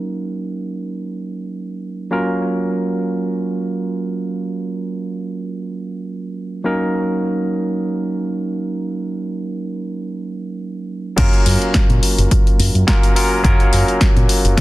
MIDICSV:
0, 0, Header, 1, 4, 480
1, 0, Start_track
1, 0, Key_signature, 6, "major"
1, 0, Tempo, 566038
1, 1800, Time_signature, 4, 2, 24, 8
1, 12388, End_track
2, 0, Start_track
2, 0, Title_t, "Tine electric piano"
2, 0, Program_c, 0, 4
2, 0, Note_on_c, 0, 54, 67
2, 0, Note_on_c, 0, 58, 61
2, 0, Note_on_c, 0, 61, 63
2, 0, Note_on_c, 0, 63, 62
2, 0, Note_on_c, 0, 70, 74
2, 1770, Note_off_c, 0, 54, 0
2, 1771, Note_off_c, 0, 58, 0
2, 1773, Note_off_c, 0, 61, 0
2, 1776, Note_off_c, 0, 63, 0
2, 1778, Note_off_c, 0, 70, 0
2, 1787, Note_on_c, 0, 54, 69
2, 1792, Note_on_c, 0, 58, 63
2, 1796, Note_on_c, 0, 61, 63
2, 1800, Note_on_c, 0, 65, 61
2, 1804, Note_on_c, 0, 70, 75
2, 5608, Note_off_c, 0, 54, 0
2, 5610, Note_off_c, 0, 58, 0
2, 5612, Note_off_c, 0, 61, 0
2, 5614, Note_off_c, 0, 65, 0
2, 5616, Note_off_c, 0, 70, 0
2, 5631, Note_on_c, 0, 54, 67
2, 5635, Note_on_c, 0, 58, 64
2, 5640, Note_on_c, 0, 61, 64
2, 5644, Note_on_c, 0, 63, 63
2, 5647, Note_on_c, 0, 70, 77
2, 9449, Note_off_c, 0, 54, 0
2, 9452, Note_off_c, 0, 58, 0
2, 9454, Note_off_c, 0, 61, 0
2, 9456, Note_off_c, 0, 63, 0
2, 9457, Note_off_c, 0, 70, 0
2, 9466, Note_on_c, 0, 54, 97
2, 9471, Note_on_c, 0, 58, 90
2, 9475, Note_on_c, 0, 61, 91
2, 9479, Note_on_c, 0, 65, 90
2, 9483, Note_on_c, 0, 70, 110
2, 10887, Note_off_c, 0, 54, 0
2, 10890, Note_off_c, 0, 58, 0
2, 10891, Note_off_c, 0, 61, 0
2, 10894, Note_off_c, 0, 65, 0
2, 10896, Note_off_c, 0, 70, 0
2, 10914, Note_on_c, 0, 54, 98
2, 10916, Note_on_c, 0, 58, 89
2, 10918, Note_on_c, 0, 61, 89
2, 10920, Note_on_c, 0, 65, 88
2, 10922, Note_on_c, 0, 70, 110
2, 11131, Note_off_c, 0, 54, 0
2, 11132, Note_off_c, 0, 58, 0
2, 11133, Note_off_c, 0, 61, 0
2, 11134, Note_off_c, 0, 65, 0
2, 11135, Note_off_c, 0, 70, 0
2, 11154, Note_on_c, 0, 54, 83
2, 11156, Note_on_c, 0, 58, 75
2, 11158, Note_on_c, 0, 61, 76
2, 11161, Note_on_c, 0, 65, 78
2, 11163, Note_on_c, 0, 70, 91
2, 11371, Note_off_c, 0, 54, 0
2, 11372, Note_off_c, 0, 58, 0
2, 11373, Note_off_c, 0, 61, 0
2, 11375, Note_off_c, 0, 65, 0
2, 11375, Note_off_c, 0, 70, 0
2, 11389, Note_on_c, 0, 54, 96
2, 11392, Note_on_c, 0, 58, 88
2, 11396, Note_on_c, 0, 61, 85
2, 11402, Note_on_c, 0, 65, 91
2, 11406, Note_on_c, 0, 70, 108
2, 12388, Note_off_c, 0, 54, 0
2, 12388, Note_off_c, 0, 58, 0
2, 12388, Note_off_c, 0, 61, 0
2, 12388, Note_off_c, 0, 65, 0
2, 12388, Note_off_c, 0, 70, 0
2, 12388, End_track
3, 0, Start_track
3, 0, Title_t, "Fingered electric bass"
3, 0, Program_c, 1, 33
3, 9480, Note_on_c, 1, 42, 92
3, 9561, Note_off_c, 1, 42, 0
3, 9719, Note_on_c, 1, 42, 78
3, 9801, Note_off_c, 1, 42, 0
3, 10089, Note_on_c, 1, 46, 83
3, 10157, Note_off_c, 1, 46, 0
3, 10330, Note_on_c, 1, 30, 95
3, 10398, Note_off_c, 1, 30, 0
3, 10679, Note_on_c, 1, 42, 86
3, 10761, Note_off_c, 1, 42, 0
3, 10809, Note_on_c, 1, 42, 99
3, 10877, Note_off_c, 1, 42, 0
3, 11401, Note_on_c, 1, 42, 97
3, 11482, Note_off_c, 1, 42, 0
3, 11641, Note_on_c, 1, 42, 82
3, 11722, Note_off_c, 1, 42, 0
3, 12011, Note_on_c, 1, 46, 83
3, 12079, Note_off_c, 1, 46, 0
3, 12251, Note_on_c, 1, 30, 94
3, 12388, Note_off_c, 1, 30, 0
3, 12388, End_track
4, 0, Start_track
4, 0, Title_t, "Drums"
4, 9478, Note_on_c, 9, 42, 80
4, 9478, Note_on_c, 9, 49, 104
4, 9480, Note_on_c, 9, 36, 117
4, 9563, Note_off_c, 9, 42, 0
4, 9563, Note_off_c, 9, 49, 0
4, 9565, Note_off_c, 9, 36, 0
4, 9609, Note_on_c, 9, 42, 38
4, 9694, Note_off_c, 9, 42, 0
4, 9718, Note_on_c, 9, 46, 101
4, 9802, Note_off_c, 9, 46, 0
4, 9851, Note_on_c, 9, 42, 37
4, 9936, Note_off_c, 9, 42, 0
4, 9956, Note_on_c, 9, 38, 125
4, 9958, Note_on_c, 9, 42, 81
4, 9961, Note_on_c, 9, 36, 105
4, 10041, Note_off_c, 9, 38, 0
4, 10043, Note_off_c, 9, 42, 0
4, 10046, Note_off_c, 9, 36, 0
4, 10089, Note_on_c, 9, 42, 39
4, 10174, Note_off_c, 9, 42, 0
4, 10199, Note_on_c, 9, 46, 104
4, 10284, Note_off_c, 9, 46, 0
4, 10333, Note_on_c, 9, 42, 56
4, 10417, Note_off_c, 9, 42, 0
4, 10441, Note_on_c, 9, 36, 116
4, 10442, Note_on_c, 9, 42, 82
4, 10526, Note_off_c, 9, 36, 0
4, 10526, Note_off_c, 9, 42, 0
4, 10574, Note_on_c, 9, 42, 38
4, 10659, Note_off_c, 9, 42, 0
4, 10681, Note_on_c, 9, 46, 103
4, 10766, Note_off_c, 9, 46, 0
4, 10813, Note_on_c, 9, 42, 38
4, 10898, Note_off_c, 9, 42, 0
4, 10919, Note_on_c, 9, 38, 123
4, 10921, Note_on_c, 9, 36, 107
4, 10922, Note_on_c, 9, 42, 81
4, 11004, Note_off_c, 9, 38, 0
4, 11006, Note_off_c, 9, 36, 0
4, 11006, Note_off_c, 9, 42, 0
4, 11053, Note_on_c, 9, 42, 55
4, 11138, Note_off_c, 9, 42, 0
4, 11162, Note_on_c, 9, 46, 109
4, 11247, Note_off_c, 9, 46, 0
4, 11401, Note_on_c, 9, 36, 121
4, 11402, Note_on_c, 9, 42, 80
4, 11485, Note_off_c, 9, 36, 0
4, 11487, Note_off_c, 9, 42, 0
4, 11533, Note_on_c, 9, 42, 37
4, 11618, Note_off_c, 9, 42, 0
4, 11641, Note_on_c, 9, 46, 103
4, 11725, Note_off_c, 9, 46, 0
4, 11773, Note_on_c, 9, 42, 36
4, 11858, Note_off_c, 9, 42, 0
4, 11879, Note_on_c, 9, 38, 122
4, 11881, Note_on_c, 9, 36, 108
4, 11881, Note_on_c, 9, 42, 80
4, 11964, Note_off_c, 9, 38, 0
4, 11965, Note_off_c, 9, 36, 0
4, 11966, Note_off_c, 9, 42, 0
4, 12013, Note_on_c, 9, 42, 38
4, 12097, Note_off_c, 9, 42, 0
4, 12120, Note_on_c, 9, 46, 111
4, 12204, Note_off_c, 9, 46, 0
4, 12253, Note_on_c, 9, 42, 53
4, 12337, Note_off_c, 9, 42, 0
4, 12358, Note_on_c, 9, 38, 63
4, 12360, Note_on_c, 9, 42, 81
4, 12361, Note_on_c, 9, 36, 125
4, 12388, Note_off_c, 9, 36, 0
4, 12388, Note_off_c, 9, 38, 0
4, 12388, Note_off_c, 9, 42, 0
4, 12388, End_track
0, 0, End_of_file